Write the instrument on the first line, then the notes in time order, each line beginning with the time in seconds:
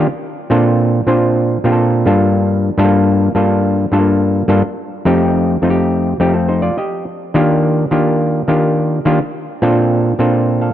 clav
0.50 A#2 C4 D4 F4 A4
1.07 A#2 C4 D4 F4 C5
1.64 A#2 C4 D4 F4 G4
1.72 A4
2.06 G2 A#3 D4 F4 A4
2.78 G2 A3 D4 F4 A4
2.85 A#3
3.35 G2 A#3 D4 F4 A4
3.92 G2 A3 D4 F4 A4
3.99 A#3
4.48 G2 A#3 D4 F4 A4
5.05 F2 A3 C4 D#4 G4
5.62 F2 A3 C4 D#4 F4
5.70 G4
6.20 F2 A3 C4 D#4 G4
6.34 C4 A4
6.48 D#4 C5
6.62 F4 D5
6.78 G4 D#5
7.34 D#3 A#3 D4 F4 G4
7.91 D#3 A#3 D4 F4 G4
8.48 D#3 A#3 D4 F4 G4
9.05 D#3 A#3 D4 F4 G4
9.62 A#2 C4 D4 F4 A4
10.19 A#2 C4 D4 F4 A4
10.61 A4 F5